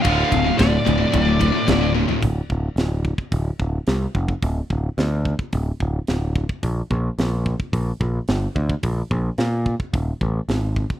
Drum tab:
RD |x-x-x-x-x-x-x---|----------------|----------------|----------------|
HH |----------------|o---o---o---o---|o---o---o---o---|o---o---o---o---|
SD |----o-------o---|----o-------o---|----o-------o---|----o-------o---|
T1 |--------------o-|----------------|----------------|----------------|
FT |---------------o|----------------|----------------|----------------|
BD |o-o-o-o-o-o-o---|o-o---ooo-o---oo|o-o---ooo-o---oo|o-o---ooo-o---oo|

RD |----------------|
HH |o---o---o---o---|
SD |----o-------o---|
T1 |----------------|
FT |----------------|
BD |o-o---ooo-o---oo|